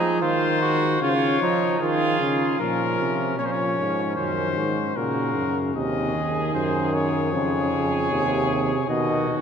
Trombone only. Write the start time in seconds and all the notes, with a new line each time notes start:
Already playing: F3
0.22 D#3
1.01 C#3
1.41 F3
1.80 D#3
2.20 C#3
2.59 F3
3.38 F3
4.17 D#3
4.97 C#3
5.74 C3
6.14 D#3
7.33 C#3
7.73 C#3
8.11 C3
8.88 D#3
9.28 D#3